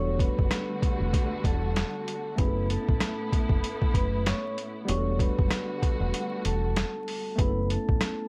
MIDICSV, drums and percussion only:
0, 0, Header, 1, 2, 480
1, 0, Start_track
1, 0, Tempo, 625000
1, 1832, Time_signature, 4, 2, 24, 8
1, 6359, End_track
2, 0, Start_track
2, 0, Title_t, "Drums"
2, 149, Note_on_c, 9, 36, 90
2, 155, Note_on_c, 9, 42, 79
2, 226, Note_off_c, 9, 36, 0
2, 231, Note_off_c, 9, 42, 0
2, 297, Note_on_c, 9, 36, 99
2, 374, Note_off_c, 9, 36, 0
2, 389, Note_on_c, 9, 38, 117
2, 393, Note_on_c, 9, 37, 93
2, 393, Note_on_c, 9, 42, 110
2, 466, Note_off_c, 9, 38, 0
2, 469, Note_off_c, 9, 37, 0
2, 470, Note_off_c, 9, 42, 0
2, 633, Note_on_c, 9, 36, 96
2, 637, Note_on_c, 9, 42, 80
2, 710, Note_off_c, 9, 36, 0
2, 714, Note_off_c, 9, 42, 0
2, 872, Note_on_c, 9, 36, 99
2, 874, Note_on_c, 9, 42, 87
2, 948, Note_off_c, 9, 36, 0
2, 951, Note_off_c, 9, 42, 0
2, 1107, Note_on_c, 9, 36, 92
2, 1112, Note_on_c, 9, 42, 81
2, 1183, Note_off_c, 9, 36, 0
2, 1188, Note_off_c, 9, 42, 0
2, 1353, Note_on_c, 9, 42, 95
2, 1356, Note_on_c, 9, 38, 118
2, 1359, Note_on_c, 9, 37, 96
2, 1430, Note_off_c, 9, 42, 0
2, 1432, Note_off_c, 9, 38, 0
2, 1436, Note_off_c, 9, 37, 0
2, 1596, Note_on_c, 9, 42, 62
2, 1672, Note_off_c, 9, 42, 0
2, 1830, Note_on_c, 9, 36, 115
2, 1830, Note_on_c, 9, 42, 99
2, 1907, Note_off_c, 9, 36, 0
2, 1907, Note_off_c, 9, 42, 0
2, 2073, Note_on_c, 9, 42, 80
2, 2150, Note_off_c, 9, 42, 0
2, 2216, Note_on_c, 9, 36, 100
2, 2293, Note_off_c, 9, 36, 0
2, 2307, Note_on_c, 9, 38, 114
2, 2311, Note_on_c, 9, 37, 92
2, 2311, Note_on_c, 9, 42, 111
2, 2384, Note_off_c, 9, 38, 0
2, 2387, Note_off_c, 9, 37, 0
2, 2388, Note_off_c, 9, 42, 0
2, 2554, Note_on_c, 9, 36, 93
2, 2557, Note_on_c, 9, 42, 78
2, 2630, Note_off_c, 9, 36, 0
2, 2634, Note_off_c, 9, 42, 0
2, 2683, Note_on_c, 9, 36, 101
2, 2760, Note_off_c, 9, 36, 0
2, 2794, Note_on_c, 9, 42, 89
2, 2871, Note_off_c, 9, 42, 0
2, 2931, Note_on_c, 9, 36, 91
2, 3008, Note_off_c, 9, 36, 0
2, 3027, Note_on_c, 9, 36, 90
2, 3032, Note_on_c, 9, 42, 86
2, 3103, Note_off_c, 9, 36, 0
2, 3109, Note_off_c, 9, 42, 0
2, 3274, Note_on_c, 9, 42, 100
2, 3276, Note_on_c, 9, 38, 117
2, 3280, Note_on_c, 9, 37, 97
2, 3350, Note_off_c, 9, 42, 0
2, 3353, Note_off_c, 9, 38, 0
2, 3356, Note_off_c, 9, 37, 0
2, 3517, Note_on_c, 9, 42, 63
2, 3593, Note_off_c, 9, 42, 0
2, 3752, Note_on_c, 9, 42, 99
2, 3829, Note_off_c, 9, 42, 0
2, 3989, Note_on_c, 9, 36, 92
2, 3994, Note_on_c, 9, 42, 80
2, 4066, Note_off_c, 9, 36, 0
2, 4071, Note_off_c, 9, 42, 0
2, 4137, Note_on_c, 9, 36, 96
2, 4214, Note_off_c, 9, 36, 0
2, 4228, Note_on_c, 9, 38, 115
2, 4231, Note_on_c, 9, 37, 95
2, 4232, Note_on_c, 9, 42, 109
2, 4305, Note_off_c, 9, 38, 0
2, 4308, Note_off_c, 9, 37, 0
2, 4309, Note_off_c, 9, 42, 0
2, 4474, Note_on_c, 9, 36, 93
2, 4476, Note_on_c, 9, 42, 82
2, 4551, Note_off_c, 9, 36, 0
2, 4553, Note_off_c, 9, 42, 0
2, 4714, Note_on_c, 9, 42, 86
2, 4791, Note_off_c, 9, 42, 0
2, 4953, Note_on_c, 9, 42, 83
2, 5029, Note_off_c, 9, 42, 0
2, 5195, Note_on_c, 9, 42, 97
2, 5198, Note_on_c, 9, 38, 118
2, 5201, Note_on_c, 9, 37, 95
2, 5272, Note_off_c, 9, 42, 0
2, 5274, Note_off_c, 9, 38, 0
2, 5278, Note_off_c, 9, 37, 0
2, 5437, Note_on_c, 9, 46, 46
2, 5514, Note_off_c, 9, 46, 0
2, 5671, Note_on_c, 9, 36, 115
2, 5673, Note_on_c, 9, 42, 98
2, 5748, Note_off_c, 9, 36, 0
2, 5750, Note_off_c, 9, 42, 0
2, 5916, Note_on_c, 9, 42, 79
2, 5992, Note_off_c, 9, 42, 0
2, 6058, Note_on_c, 9, 36, 103
2, 6134, Note_off_c, 9, 36, 0
2, 6149, Note_on_c, 9, 38, 118
2, 6153, Note_on_c, 9, 37, 93
2, 6153, Note_on_c, 9, 42, 109
2, 6226, Note_off_c, 9, 38, 0
2, 6230, Note_off_c, 9, 37, 0
2, 6230, Note_off_c, 9, 42, 0
2, 6359, End_track
0, 0, End_of_file